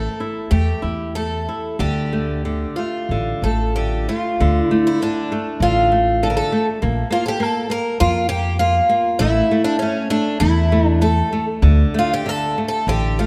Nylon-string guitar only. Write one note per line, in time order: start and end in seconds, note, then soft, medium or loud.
0.00 0.19 A3 medium
0.20 0.50 E4 soft
0.51 0.82 A3 soft
0.82 1.14 E4 soft
1.17 1.47 A3 soft
1.49 1.79 E4 soft
1.79 2.44 D3 medium
2.13 2.43 A3 soft
2.45 2.76 D3 soft
2.78 3.09 A3 soft
3.11 3.43 D3 soft
3.45 3.76 A3 soft
3.77 4.08 D3 soft
4.10 4.40 A3 soft
4.41 5.01 D3 medium
4.71 5.00 A3 soft
5.02 5.31 D3 medium
5.32 5.60 A3 soft
5.63 5.91 D3 soft
5.92 6.21 A3 soft
6.23 6.52 D3 soft
6.52 6.81 A3 soft
6.82 7.09 A#3 medium
7.11 7.39 A#3 medium
7.40 7.69 A#3 medium
7.70 7.99 A#3 medium
8.00 8.28 A#3 medium
8.30 8.59 A#3 medium
8.60 8.88 A#3 medium
8.89 9.19 A#3 medium
9.21 9.50 A3 medium
9.51 9.80 A3 medium
9.82 10.09 A3 medium
10.11 10.39 A3 medium
10.40 10.70 A3 medium
10.72 11.00 A3 medium
11.01 11.31 A3 soft
11.32 11.62 A3 medium
11.62 12.25 D3 medium
11.94 12.24 A3 medium
12.26 12.55 D3 medium
12.58 12.87 A3 soft
12.88 13.18 D3 soft
13.20 13.27 A3 soft